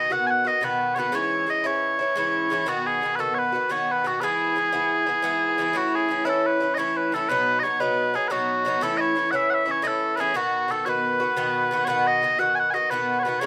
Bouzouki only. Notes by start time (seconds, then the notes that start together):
Already playing: B2 D#3 B3
0.10 B2 D#3 B3 F#4
0.45 D#3 B3 F#4
0.61 B2 D#3 B3 F#4
0.96 B2 D#3 B3 F#4
1.12 G#2 E3 C#4 E4
1.47 G#2 E3 C#4 E4
1.64 G#2 E3 C#4 E4
1.99 E3 C#4 E4
2.16 G#2 E3 C#4 E4
2.50 G#2 E3 C#4 E4
2.66 B2 D#3 B3 F#4
3.01 B2 D#3 B3 F#4
3.19 B2 D#3 B3 F#4
3.52 D#3 B3 F#4
3.69 B2 D#3 B3 F#4
4.04 B2 D#3 B3 F#4
4.21 G#2 E3 B3 E4
4.55 G#2 E3 B3 E4
4.72 G#2 E3 B3 E4
5.07 E3 B3 E4
5.22 G#2 E3 B3 E4
5.58 G#2 E3 B3 E4
5.73 A2 E3 C#4 E4
6.09 A2 E3 C#4 E4
6.25 A2 E3 C#4 E4
6.60 E3 C#4 E4
6.77 A2 E3 C#4 E4
7.12 A2 E3 C#4 E4
7.29 B2 F#3 B3 D#4
7.63 B2 F#3 B3 D#4
7.80 B2 F#3 B3 D#4
8.14 F#3 B3 D#4
8.30 B2 F#3 B3 D#4
8.65 B2 F#3 B3 D#4
8.81 A2 E3 C#4 E4
9.15 A2 E3 C#4 E4
9.33 A2 E3 C#4 E4
9.66 E3 C#4 E4
9.82 A2 E3 C#4 E4
10.17 A2 E3 C#4 E4
10.34 B2 D#3 B3 F#4
10.68 B2 D#3 B3 F#4
10.86 B2 D#3 B3 F#4
11.20 D#3 B3 F#4
11.37 B2 D#3 B3 F#4
11.71 B2 D#3 B3 F#4
11.87 B2 D#3 B3 F#4
12.22 B2 D#3 B3 F#4
12.39 B2 D#3 B3 F#4
12.74 D#3 B3 F#4
12.91 B2 D#3 B3 F#4
13.25 B2 D#3 B3 F#4
13.41 G#2 E3 C#4 E4